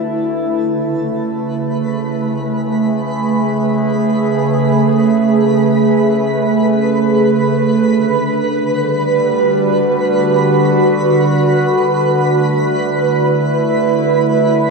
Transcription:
0.00 0.67 D3 medium
0.00 0.67 A3 medium
0.00 7.84 A3 medium
0.00 1.96 E4 medium
0.00 14.70 B4 medium
0.00 0.67 A5 medium
0.67 7.83 C#3 medium
0.67 14.70 B4 medium
0.67 14.70 B5 medium
2.19 7.83 G#4 medium
7.82 14.70 D3 medium
8.67 11.41 G3 medium
9.24 12.84 F#4 medium
11.91 14.70 A3 medium
12.93 14.70 E4 medium

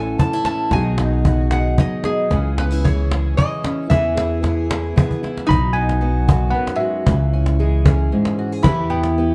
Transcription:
0.00 0.15 A1 medium
0.00 0.69 A2 medium
0.00 0.18 E3 medium
0.00 0.71 E3 medium
0.00 0.18 C#4 medium
0.00 0.44 C#4 medium
0.00 0.19 E4 medium
0.00 0.69 A4 medium
0.00 0.72 A4 medium
0.00 0.19 G#5 medium
0.18 0.72 E3 medium
0.18 0.77 A3 medium
0.18 0.33 C#4 medium
0.18 0.45 A5 loud
0.18 cajon bass medium
0.33 0.73 E4 soft
0.45 0.77 C#4 medium
0.45 0.69 C#4 soft
0.45 0.72 A5 medium
0.45 cajon slap medium
0.71 1.74 B1 medium
0.71 2.31 B2 medium
0.71 2.30 D#3 medium
0.71 1.24 F#3 medium
0.71 2.04 B3 medium
0.71 0.98 D#4 medium
0.71 1.24 F#4 medium
0.71 1.51 G#5 loud
0.71 cajon bass medium
0.71 cajon slap soft
0.76 1.53 G#4 medium
0.98 1.50 D#4 medium
0.98 1.78 D#4 medium
0.98 cajon slap medium
1.25 1.77 F#3 medium
1.25 2.31 F#4 medium
1.25 cajon bass medium
1.51 2.03 D#4 medium
1.51 3.11 G#4 medium
1.51 1.77 F#5 medium
1.51 cajon slap medium
1.78 2.28 F#3 medium
1.78 3.37 G#3 medium
1.78 2.29 D#4 medium
1.78 2.06 D#5 medium
1.78 cajon bass medium
2.04 2.28 B3 medium
2.04 2.36 D#4 medium
2.04 2.59 G#4 medium
2.04 cajon slap medium
2.30 3.33 C#2 loud
2.30 2.84 C#3 medium
2.30 3.89 E3 medium
2.30 2.58 C#4 medium
2.30 2.84 G#4 medium
2.30 cajon bass medium
2.30 cajon slap soft
2.58 2.71 B3 medium
2.58 2.72 C#4 medium
2.58 2.85 B4 medium
2.58 cajon slap medium
2.71 3.10 C#4 soft
2.71 3.37 E4 soft
2.84 3.36 E3 medium
2.84 3.90 G#4 medium
2.84 3.39 C#5 medium
2.84 cajon bass medium
3.11 3.62 C#4 medium
3.11 3.87 G#4 medium
3.11 cajon slap medium
3.37 3.89 E3 medium
3.37 3.95 G#3 medium
3.37 3.87 E4 medium
3.37 3.87 D#5 medium
3.37 cajon bass medium
3.63 3.95 C#4 medium
3.63 3.88 C#4 medium
3.63 cajon slap medium
3.90 4.92 E2 loud
3.90 5.49 E3 medium
3.90 5.48 E3 medium
3.90 4.42 B3 medium
3.90 5.22 E4 medium
3.90 4.42 G#4 medium
3.90 4.16 G#4 medium
3.90 5.18 E5 medium
3.90 cajon bass medium
4.17 4.69 E4 medium
4.17 4.69 G#4 medium
4.17 cajon slap medium
4.43 4.95 B3 medium
4.43 5.54 G#4 medium
4.43 cajon bass medium
4.43 cajon slap soft
4.57 cajon slap soft
4.70 5.22 E4 medium
4.70 4.96 G#4 medium
4.70 cajon slap medium
4.96 5.46 B3 medium
4.96 5.54 B3 medium
4.96 5.46 G#4 medium
4.96 cajon bass loud
5.11 cajon bass medium
5.23 5.46 E4 medium
5.23 5.55 E4 medium
5.23 cajon slap medium
5.37 cajon slap medium
5.46 6.51 B1 loud
5.46 6.54 B2 medium
5.46 7.06 F#3 medium
5.46 5.72 D#4 loud
5.46 5.76 B5 loud
5.51 cajon bass medium
5.64 cajon slap soft
5.73 6.49 B3 medium
5.73 7.13 D#4 medium
5.73 6.56 G#5 loud
5.89 cajon slap medium
6.01 7.04 F#3 medium
6.01 6.53 B3 medium
6.01 7.07 F#4 medium
6.28 7.04 B3 medium
6.28 6.79 F#4 medium
6.28 cajon bass loud
6.50 7.07 F#2 medium
6.50 6.75 B3 medium
6.50 6.80 F#5 loud
6.55 7.13 B3 medium
6.67 cajon slap medium
6.75 8.33 G#3 medium
6.75 8.33 E5 medium
6.80 7.12 F#4 medium
7.06 8.09 C#2 loud
7.06 7.59 C#3 medium
7.06 8.65 E3 medium
7.06 cajon bass loud
7.19 cajon slap soft
7.33 8.71 C#4 medium
7.46 cajon slap medium
7.59 8.65 E3 medium
7.59 8.11 G#3 medium
7.59 8.62 G#4 medium
7.86 8.63 C#4 medium
7.86 8.38 G#4 medium
7.86 cajon bass loud
8.12 8.62 G#2 medium
8.12 8.71 G#3 medium
8.25 cajon slap medium
8.39 8.52 F#4 medium
8.52 8.71 G#4 medium
8.63 9.35 E2 loud
8.63 9.35 E3 medium
8.63 9.18 B3 medium
8.63 8.89 E4 medium
8.63 9.35 E4 medium
8.63 8.92 B5 medium
8.63 cajon bass loud
8.67 9.18 G4 medium
8.77 cajon slap soft
8.90 9.35 B3 medium
8.90 9.35 E4 medium
8.90 9.35 G5 medium
9.03 cajon slap medium
9.18 9.35 B3 medium
9.18 9.35 G4 medium

